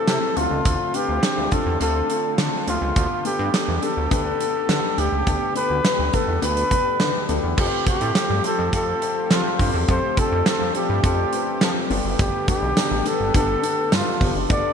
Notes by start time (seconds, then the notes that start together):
Already playing: C3 E3 A3 C4 E4 G4 A4 B4
0.07 C3 C4 E4 G4 A4, snare, closed hi-hat
0.36 D2 D3 C4 D4 E4 F4 A4, closed hi-hat
0.43 F4
0.51 C#2
0.65 D2, kick, closed hi-hat
0.94 C4 D4 F4 G4 B4, closed hi-hat
1.09 D2
1.23 C4 D4 F4 A4, snare, closed hi-hat
1.37 D2
1.51 C4 D4 F4 A4, kick, closed hi-hat
1.66 E2
1.80 D2 C4 D4 F4 A4, closed hi-hat
2.09 C4 D4 F4 A4, closed hi-hat
2.38 D3 C4 D4 F4 A4, snare, closed hi-hat
2.67 D2 D3 B3 D4 F4 G4 A4, closed hi-hat
2.82 C#2
2.96 D2, kick, closed hi-hat
3.24 B3 D4 G4 A4, closed hi-hat
3.39 G2
3.53 B3 D4 G4 A4, snare, closed hi-hat
3.68 E2
3.82 B3 D4 G4 A4, closed hi-hat
3.97 D2
4.11 D2 B3 D4 G4 A4 B4, kick, closed hi-hat
4.40 B3 D4 G4 A4, closed hi-hat
4.69 D3 B3 D4 G4 A4, snare, closed hi-hat
4.97 D2 D3 B3 D4 G4 A4, closed hi-hat
5.12 C#2
5.26 D2 B3 D4 G4 A4, kick, closed hi-hat
5.55 B3 D4 G4 A4 B4, closed hi-hat
5.70 D2
5.84 B3 D4 G4 B4, snare, closed hi-hat
5.99 D2
6.13 B3 D4 G4 A4 B4, kick, closed hi-hat
6.28 E2
6.42 D2 B3 D4 G4 B4, closed hi-hat
6.57 closed hi-hat
6.71 B3 D4 G4 B4, kick, closed hi-hat
6.99 D3 B3 D4 G4 B4, snare, closed hi-hat
7.29 D2 B3 D4 G4 A4, closed hi-hat
7.43 E2
7.57 F2 F3 A3 C4 F4 G4 A4, kick, crash
7.86 C4 F4 G4 C5, kick, closed hi-hat
8.01 A2, closed hi-hat
8.15 C4 F4 G4 A4, snare, closed hi-hat
8.30 G2
8.44 C4 F4 G4 A4 C5, closed hi-hat
8.59 F2
8.73 F2 C4 F4 G4 A4, kick, closed hi-hat
9.02 C4 F4 G4 C5, closed hi-hat
9.30 F3 C4 F4 G4 A4, snare, closed hi-hat
9.59 G2 C4 F4 G4 C5, kick, open hi-hat
9.74 E2
9.88 F2 C4 D4 F4 G4 A4 C5, kick, closed hi-hat
10.17 C4 F4 G4 A4, kick, closed hi-hat
10.32 F2
10.46 C4 F4 G4 A4 C5, snare, closed hi-hat
10.61 F2
10.75 C4 F4 G4 A4, closed hi-hat
10.89 G2
11.03 F2 C4 F4 G4 A4, kick, closed hi-hat
11.32 C4 F4 G4 B4, closed hi-hat
11.61 F3 C4 F4 G4 A4, snare, closed hi-hat
11.90 G1 G2 D3 B3 D4 G4 A4, open hi-hat
12.05 F#1
12.19 G1 G4, kick, closed hi-hat, tambourine
12.47 B3 D4 G4 A4, kick, closed hi-hat, tambourine
12.63 B1
12.76 B3 D4 G4 A4, snare, closed hi-hat, tambourine
12.91 A1
13.05 B3 D4 G4 A4 B4, closed hi-hat, tambourine
13.20 G1
13.34 G1 B3 D4 G4 A4, kick, closed hi-hat
13.63 B3 D4 G4 A4, closed hi-hat, tambourine
13.92 G2 B3 D4 F4 G4 A4, snare, closed hi-hat, tambourine
14.21 G1 G2 B3 D4 G4 A4, kick, open hi-hat
14.35 F#1
14.49 G1 B3 D4 G4 A4 D5, kick, closed hi-hat, tambourine